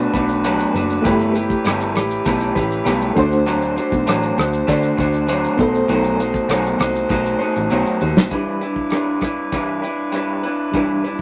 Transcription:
Already playing: A3 D4 F#4 B4
0.13 B1 A3 D4 F#4 B4, kick, closed hi-hat, shaker
0.29 shaker
0.44 B2 F#3 A3 D4 F#4 B4, closed hi-hat, shaker
0.59 shaker
0.74 F#1 D4 F#4 B4, closed hi-hat, shaker
0.78 A3
0.90 shaker
1.02 G1 G3 A3 E4 G4, kick, closed hi-hat, shaker
1.06 G4 B4
1.19 shaker
1.22 shaker
1.34 E4 G4 B4, closed hi-hat, shaker
1.50 kick, shaker
1.65 G1 G3 A3 E4 G4 B4, cross-stick, closed hi-hat, shaker
1.80 shaker
1.95 A1 E4 G4 B4, cross-stick, closed hi-hat, shaker
2.10 shaker
2.25 B1 A3 E4 G4 B4, kick, closed hi-hat, shaker
2.40 shaker
2.55 A1 E4 G4 B4, kick, closed hi-hat, shaker
2.71 shaker
2.72 shaker
2.85 B1 G3 A3 E4 G4 B4, closed hi-hat, shaker
3.01 shaker
3.14 D2 A3 D4 F#4 C5, kick, closed hi-hat, shaker
3.19 A3 D4 C5
3.32 shaker
3.46 D3 F#3 A3 D4, closed hi-hat, shaker
3.48 F#4 C5, shaker
3.61 shaker
3.64 shaker
3.76 A3 D4 F#4 C5, closed hi-hat, shaker
3.92 B1, kick, shaker
4.06 A1 D3 F#3 A3 D4 F#4 C5, cross-stick, closed hi-hat, shaker
4.22 shaker
4.37 D2 A3 D4 F#4 C5, cross-stick, closed hi-hat, shaker
4.53 shaker
4.67 D3 A3 D4 F#4 C5, kick, closed hi-hat, shaker
4.83 shaker
4.97 D2 A3 D4 F#4 C5, kick, closed hi-hat, shaker
5.13 shaker
5.15 shaker
5.27 D3 F#3 A3 D4 F#4 C5, closed hi-hat, shaker
5.44 shaker
5.57 B1 A3 B3 D#4 F#4 A4 C5, kick, closed hi-hat, shaker
5.62 B4
5.69 C5
5.75 shaker
5.88 B1 B2 F#3 A3 D#4 F#4 C5, closed hi-hat, shaker
6.04 shaker
6.18 A3 D#4 F#4 C5, closed hi-hat, shaker
6.34 kick, shaker
6.49 B1 B2 F#3 A3 D#4 F#4 C5, cross-stick, closed hi-hat, shaker
6.64 shaker
6.66 shaker
6.78 C2 A3 D#4 F#4 C5, cross-stick, closed hi-hat, shaker
6.96 shaker
7.09 B1 A3 D#4 F#4 C5, kick, shaker
7.26 shaker
7.39 A3 D#4 F#4 C5, muted picked electric bass stroke, shaker
7.56 A1, shaker
7.70 B1 B2 F#3 A3 D#4 F#4 C5, shaker
7.86 shaker
8.00 D#2 A3 D#4 F#4 C5, shaker
8.16 B1, snare, shaker
8.30 E3 G3 D4 E4 B4, kick, closed hi-hat
8.35 B4
8.61 D4 E4 B4, closed hi-hat
8.76 kick
8.90 G3 D4 E4, cross-stick, closed hi-hat
8.95 B4
9.21 E4 B4, kick, cross-stick, closed hi-hat
9.26 D4
9.52 E3 G3 D4 E4 B4, kick, closed hi-hat
9.82 D4 E4 B4, closed hi-hat
10.12 G3 D4 E4 B4, closed hi-hat
10.43 D4 E4 B4, closed hi-hat
10.72 E3 G3 D4 E4, kick, closed hi-hat
10.76 E4 B4
11.04 D4 E4 B4, closed hi-hat

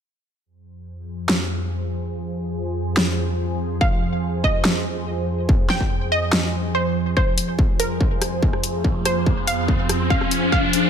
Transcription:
0.45 F2 F3 G#4 C5
1.29 snare
2.97 snare
3.81 F5, kick
4.44 D#5, kick
4.65 snare
5.49 kick
5.70 G5, snare
5.81 kick
6.12 D#5
6.33 snare
6.75 C5
7.17 F2 F3 G#4 C5, kick, riser
7.38 closed hi-hat
7.59 kick
7.80 A#4, closed hi-hat
8.01 kick
8.22 cross-stick, closed hi-hat
8.43 kick
8.53 cross-stick
8.63 closed hi-hat
8.84 kick
9.05 C5, cross-stick, closed hi-hat
9.26 kick
9.47 F5, closed hi-hat
9.68 kick
9.89 cross-stick, closed hi-hat
10.10 F5, kick
10.21 cross-stick
10.31 closed hi-hat
10.52 F5, kick
10.73 closed hi-hat

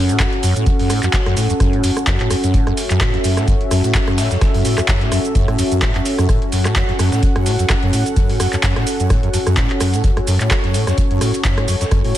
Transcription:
Already playing: F#2 C#4 F#4 A4 F#5
0.09 A2, closed hi-hat, shaker
0.20 F#2, kick, cross-stick, snare, clap, closed hi-hat, shaker
0.33 closed hi-hat
0.43 F#2, closed hi-hat, open hi-hat, shaker
0.56 A2, closed hi-hat, shaker
0.66 F#2, kick, closed hi-hat, shaker
0.79 F#2, open hi-hat
0.90 A2, cross-stick, closed hi-hat, open hi-hat, shaker
1.03 F#2, clap, closed hi-hat, shaker
1.13 kick, snare, clap, closed hi-hat, shaker
1.26 F#2, cross-stick, snare, closed hi-hat
1.37 A2, closed hi-hat, open hi-hat, shaker
1.50 F#2, closed hi-hat, shaker
1.60 F#2, kick, cross-stick, closed hi-hat, shaker
1.73 A2, closed hi-hat
1.84 F#2, closed hi-hat, open hi-hat, shaker
1.97 cross-stick, closed hi-hat, shaker
2.07 F#2, kick, snare, clap, closed hi-hat, shaker
2.20 A2, clap, closed hi-hat
2.31 F#2, cross-stick, closed hi-hat, open hi-hat, shaker
2.44 F#2, closed hi-hat, shaker
2.54 A2 E5, kick, closed hi-hat, shaker
2.67 F#2, cross-stick, closed hi-hat
2.77 closed hi-hat, open hi-hat, shaker
2.90 F#2, clap, closed hi-hat, shaker
3.01 kick, cross-stick, snare, clap, closed hi-hat, shaker
3.14 F#2, snare, closed hi-hat
3.24 F#2, closed hi-hat, open hi-hat, shaker
3.37 A2, cross-stick, snare, closed hi-hat, shaker
3.48 F#2, kick, closed hi-hat, shaker
3.61 closed hi-hat
3.71 F#2, cross-stick, closed hi-hat, open hi-hat, shaker
3.84 A2, closed hi-hat, shaker
3.95 kick, snare, clap, closed hi-hat, shaker
4.08 F#2, cross-stick, closed hi-hat
4.18 A2, snare, closed hi-hat, open hi-hat, shaker
4.31 F#2, snare, closed hi-hat, shaker
4.41 kick, cross-stick, snare, closed hi-hat, shaker
4.54 F#2, open hi-hat
4.65 A2, closed hi-hat, open hi-hat, shaker
4.78 F#2, cross-stick, clap, shaker
4.88 F#2, kick, snare, clap, closed hi-hat, shaker
5.01 A2, snare, closed hi-hat
5.12 F#2, cross-stick, closed hi-hat, open hi-hat, shaker
5.25 closed hi-hat, shaker
5.35 F#2, kick, closed hi-hat, shaker
5.48 A2, cross-stick, closed hi-hat
5.59 F#2, closed hi-hat, open hi-hat, shaker
5.72 F#2, closed hi-hat, shaker
5.82 A2, kick, cross-stick, snare, clap, closed hi-hat, shaker
5.95 F#2, clap, closed hi-hat
6.05 closed hi-hat, open hi-hat, shaker
6.18 F#2, cross-stick, closed hi-hat, shaker
6.29 A2 F#5, kick, cross-stick, closed hi-hat, shaker
6.42 closed hi-hat
6.52 F#2, closed hi-hat, open hi-hat, shaker
6.65 A2, cross-stick, clap, shaker
6.76 F#2, kick, snare, clap, closed hi-hat, shaker
6.89 F#2, snare, closed hi-hat
6.99 F#2, cross-stick, snare, closed hi-hat, open hi-hat, shaker
7.12 A2, snare, closed hi-hat, shaker
7.23 kick, closed hi-hat, shaker
7.36 F#2, cross-stick, closed hi-hat
7.46 A2, closed hi-hat, open hi-hat, shaker
7.59 F#2, closed hi-hat, shaker
7.70 F#2, kick, cross-stick, snare, clap, closed hi-hat, shaker
7.83 F#2, closed hi-hat
7.93 A2, closed hi-hat, open hi-hat, shaker
8.06 closed hi-hat, shaker
8.16 F#2, kick, closed hi-hat, shaker
8.29 A2, open hi-hat
8.40 F#2, cross-stick, closed hi-hat, open hi-hat, shaker
8.53 F#2, clap, closed hi-hat, shaker
8.63 F#2, kick, snare, clap, closed hi-hat, shaker
8.76 A2, cross-stick, snare, closed hi-hat
8.87 closed hi-hat, open hi-hat, shaker
9.00 F#2, closed hi-hat, shaker
9.10 A2, kick, cross-stick, closed hi-hat, shaker
9.23 F#2, closed hi-hat
9.34 F#2, closed hi-hat, open hi-hat, shaker
9.47 F#2, cross-stick, closed hi-hat, shaker
9.57 A2, kick, snare, clap, closed hi-hat, shaker
9.70 clap, closed hi-hat
9.80 F#2, cross-stick, closed hi-hat, open hi-hat, shaker
9.93 A2, closed hi-hat, shaker
10.04 F#2 C#5, kick, closed hi-hat, shaker
10.17 F#2, cross-stick, closed hi-hat
10.27 F#2, closed hi-hat, open hi-hat, shaker
10.40 A2, clap, closed hi-hat, shaker
10.51 kick, cross-stick, snare, clap, closed hi-hat, shaker
10.64 F#2, snare, closed hi-hat
10.74 A2, closed hi-hat, open hi-hat, shaker
10.87 F#2, cross-stick, snare, closed hi-hat, shaker
10.98 F#2, kick, closed hi-hat, shaker
11.11 F#2, closed hi-hat
11.21 A2, cross-stick, closed hi-hat, open hi-hat, shaker
11.34 closed hi-hat, shaker
11.45 F#2, kick, snare, clap, closed hi-hat, shaker
11.58 A2, cross-stick, closed hi-hat
11.68 F#2, closed hi-hat, open hi-hat, shaker
11.81 F#2, snare, closed hi-hat, shaker
11.91 F#2, kick, cross-stick, closed hi-hat, shaker
12.04 A2, open hi-hat

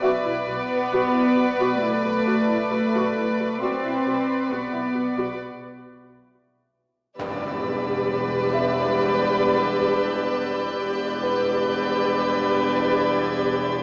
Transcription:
Already playing: F#5
0.02 B1 F#4 B4 D5 E5
0.24 B1 E4
0.47 B1 B3 F#4
0.91 B1 F#4
1.14 B1 E4
1.36 B1 F#4
1.59 B1 F#4
1.80 B1 A3 E4
2.04 B1 F#4
2.26 B1 F#4
2.48 B1 E4
2.71 B1 F#4
2.93 B1 F#4
3.15 B1 E4
3.38 B1 F#4
3.60 B1 C4 F#4 B4 D5
3.83 B1 E4
4.05 B1 F#4
4.50 B1 B3 F#4
4.73 B1 E4
4.95 B1 F#4
5.17 B1 F#4
7.18 E1 E2 G3 D4 G4 B4 D5 E6, impact
8.09 F#6
8.53 E5
9.00 G6
10.77 E1 E2 G3 D4 G4 B4 D5
11.23 B4
12.43 G6
12.66 G#6

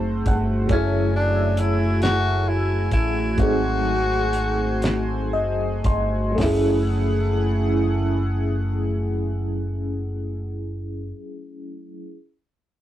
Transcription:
Already playing: F#1 F#3 A3 C4 D#4 F#4 G#4 C5 F#5 A5
0.26 G1 F#5, kick, closed hi-hat
0.67 F#1 F#3 A3 F#4 C#5 E5 G#5, kick, closed hi-hat
0.72 C#4 E4 G#4
1.16 D4
1.57 E4, closed hi-hat
2.02 F#4, snare, closed hi-hat
2.49 E4
2.91 A1 E4, kick, closed hi-hat
3.35 G#1 F#3 A3 C4 C5, kick, closed hi-hat
3.39 D#4 F#4 G#4
4.33 closed hi-hat
4.82 snare, closed hi-hat
5.33 F#1 D#5
5.84 G1 C6, kick, closed hi-hat
6.32 F#3 A3
6.38 F#1 A3 C#4 E4 G#4 F#5, snare, floor tom, open hi-hat
6.42 E4 G#4

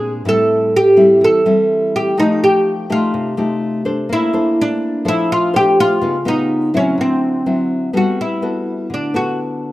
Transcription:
Already playing: A#2 G#3 C4 D4 G#4
0.25 A2 G3 C4 E4 A4
0.76 G4
0.97 G3 C4 E4
1.21 E3 A4
1.46 G3 C4 E4
1.96 G4
2.17 F3 A3 D#4 G4
2.44 G4
2.90 A3 D#4 F4 G4
3.14 C3
3.37 A3 D#4 G4
3.85 D4 A4 C5
4.09 A#3 E4
4.33 D4 A4 C5
4.61 D4
5.05 F3 D4 E4 A4 C5
5.32 F4
5.53 D4 G4 A4 C5
5.80 F4
6.01 C#3 B3 D#4 F4
6.25 B3 D#4 F4
6.74 F#3 C4 C#4 E4
6.98 D3 C4
7.46 F#3 C4 E4
7.93 G3 B3 F#4 A4
8.21 E4
8.42 B3 F#4 A4
8.90 D3 D4
9.14 B3 F#4 A4

